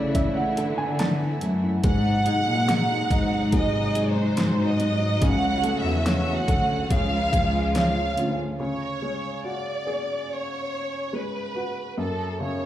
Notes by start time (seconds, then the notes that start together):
Already playing: C#3 E3 A3 E4 A4 C#5 D5
0.15 D5 E5, kick, closed hi-hat
0.35 E4 F#5
0.57 D3 A4, closed hi-hat
0.78 E4 G#5
0.99 A3 A5, snare, closed hi-hat
1.21 E4
1.41 F#2 A3, closed hi-hat
1.64 E4
1.84 G#2 C3 F#3 G#3 D#4 F#5, kick, closed hi-hat
2.05 D#4
2.26 D#4 G#4, closed hi-hat
2.47 A#2 D#4
2.68 G#3 C4, snare, closed hi-hat
2.90 D#4
3.10 G#2 C4 D#4, kick, closed hi-hat
3.32 D#4
3.52 G#2 G#3 D#5, kick, closed hi-hat
3.73 D#4
3.94 G#2 G#4, closed hi-hat
4.11 C5
4.16 D#4
4.37 C4, snare, closed hi-hat
4.58 D#4
4.67 D#5
4.79 C4, closed hi-hat
5.00 D#4
5.21 C#2 C#3 A3 F#4 F#5, kick, closed hi-hat
5.42 C#4
5.63 A3 A4, closed hi-hat
5.80 E5
5.85 E2 C#4, snare
6.05 A3 C#4, snare, closed hi-hat
6.26 C#4
6.35 F#5
6.47 D2 A3 A4, kick, closed hi-hat
6.69 C#4
6.90 C#2 C#3 F3 G#3 F4 F5, kick, closed hi-hat
7.11 F4
7.32 C#2 G#3 G#4, kick, closed hi-hat
7.53 F4
7.74 C#4 F5, snare, closed hi-hat
7.95 F4
8.16 D2 C#4 F4, closed hi-hat
8.38 F4
8.60 C#3 C#5
9.02 G#3
9.44 F#4 D5
9.87 G#4
10.31 C#5
11.13 G#3 B4
11.55 F#4
11.97 F#2 A4
12.40 C#3 C#5